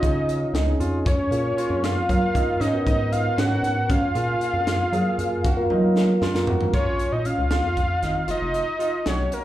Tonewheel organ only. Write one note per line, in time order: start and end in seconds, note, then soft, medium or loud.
0.00 0.58 C#4 medium
0.00 0.58 D#4 medium
0.00 0.58 F4 medium
0.66 1.05 C#4 medium
0.66 1.05 D#4 medium
0.66 1.06 G#4 loud
1.31 1.99 A#3 medium
1.31 1.99 F4 medium
1.31 1.99 G#4 medium
2.09 2.61 A#3 medium
2.09 2.61 F4 medium
2.09 2.61 A#4 medium
2.73 3.41 B3 medium
2.73 3.42 F#4 medium
2.73 3.42 A#4 medium
3.50 3.89 B3 medium
3.50 3.90 F#4 medium
3.50 3.90 A#4 medium
4.15 4.83 A#3 medium
4.15 4.83 F4 medium
4.15 4.84 G#4 medium
4.93 5.49 A#3 medium
4.93 5.50 F4 medium
4.93 5.50 G#4 medium
5.57 6.25 A#3 medium
5.57 6.25 F4 medium
5.57 6.25 A#4 loud
6.35 6.74 A#3 medium
6.35 6.74 F4 medium
6.35 6.74 A#4 medium